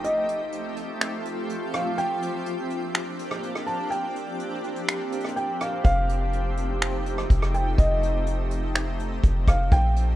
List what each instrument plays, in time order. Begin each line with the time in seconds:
Already playing: ambient pad F3 A3 C4 G4
0.04 ambient pad F4, felt piano D#5, closed hi-hat
0.28 closed hi-hat
0.52 closed hi-hat
0.76 closed hi-hat
1.01 finger snap, closed hi-hat
1.25 closed hi-hat
1.49 closed hi-hat
1.73 felt piano F5, cross-stick, closed hi-hat
1.98 ambient pad A#3 D4, felt piano G5, closed hi-hat
2.22 closed hi-hat
2.46 closed hi-hat
2.70 closed hi-hat
2.95 finger snap, closed hi-hat
3.19 closed hi-hat
3.31 cross-stick
3.43 closed hi-hat
3.55 cross-stick
3.67 felt piano A5, closed hi-hat
3.90 felt piano G5, closed hi-hat
4.16 closed hi-hat
4.40 closed hi-hat
4.64 closed hi-hat
4.76 closed hi-hat
4.88 finger snap, closed hi-hat
5.12 closed hi-hat
5.20 closed hi-hat
5.25 cross-stick, closed hi-hat
5.36 felt piano G5, closed hi-hat
5.60 felt piano F5, cross-stick, closed hi-hat
5.84 808-style bass F1, ambient pad A3 D#4, felt piano F5, kick, closed hi-hat
6.09 closed hi-hat
6.33 closed hi-hat
6.57 closed hi-hat
6.82 finger snap, closed hi-hat
7.06 closed hi-hat
7.18 cross-stick
7.30 808-style bass F1, kick, closed hi-hat
7.42 cross-stick
7.54 felt piano G5, closed hi-hat
7.78 808-style bass F1, felt piano D#5, kick, closed hi-hat
8.03 closed hi-hat
8.26 closed hi-hat
8.51 closed hi-hat
8.75 finger snap, closed hi-hat
8.99 closed hi-hat
9.23 808-style bass F1, kick, closed hi-hat
9.47 808-style bass F1, felt piano F5, kick, cross-stick, closed hi-hat
9.71 808-style bass A#1, ambient pad F3 A#3 C4 D4 G4, felt piano G5, kick, closed hi-hat
9.96 closed hi-hat